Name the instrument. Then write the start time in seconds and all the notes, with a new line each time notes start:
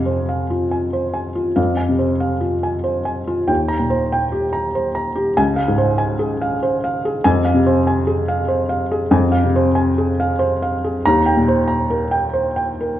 felt piano
Already playing: F2 C3 F5 G#5
0.06 C5
0.29 F5
0.50 F4
0.71 G#5
0.93 C5
1.14 G#5
1.35 F4
1.56 F2 F5
1.77 G#5
1.89 C3
1.99 C5
2.20 F5
2.41 F4
2.63 G#5
2.84 C5
3.05 G#5
3.28 F4
3.48 D#2 G5
3.68 A#5
3.79 A#2
3.90 C5
4.12 G5
4.32 G4
4.53 A#5
4.75 C5
4.95 A#5
5.15 G4
5.37 C#2 G#5
5.56 F5
5.68 G#2
5.78 C5
5.98 G#5
6.19 G#4
6.42 F5
6.63 C5
6.84 F5
7.05 G#4
7.24 F2 G#5
7.45 F5
7.54 C3
7.67 C5
7.87 G#5
8.07 G#4
8.28 F5
8.48 C5
8.69 F5
8.92 G#4
9.11 F2 G#5
9.32 F5
9.44 C3
9.56 C5
9.75 G#5
9.98 G#4
10.20 F5
10.39 C5
10.62 F5
10.84 G#4
11.06 D#2 A#5
11.26 G5
11.37 A#2
11.48 C5
11.68 A#5
11.90 A#4
12.11 G5
12.34 C5
12.56 G5
12.81 A#4